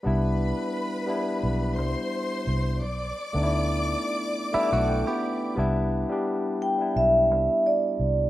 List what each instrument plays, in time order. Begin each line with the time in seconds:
0.03 fingered electric bass C2, tine electric piano G3 B3 D4 E4, string section B4 B5
1.06 tine electric piano G3 B3 D4 E4
1.43 fingered electric bass B1
1.78 fingered electric bass C2, string section C5 C6
2.47 fingered electric bass C2
2.81 fingered electric bass B1, string section D5 D6
3.33 fingered electric bass D2, tine electric piano A3 B3 D4 D#4
3.43 tine electric piano E4
4.52 clean electric guitar G3 E4, tine electric piano A3 B3 D4 E4 E5, muted fingered electric bass stroke
4.72 fingered electric bass B1, clean electric guitar A3 F#4
4.88 tine electric piano G5
5.07 clean electric guitar B3 G4
5.23 tine electric piano B5
5.56 fingered electric bass C2, tine electric piano G3 B3 D4 E4
6.09 tine electric piano G3 B3 D4 G4
6.62 vibraphone G5
6.78 tine electric piano G3 B3 D4 E4
6.96 fingered electric bass B1, vibraphone E5
7.31 fingered electric bass C2
7.67 vibraphone D5
8.00 fingered electric bass C2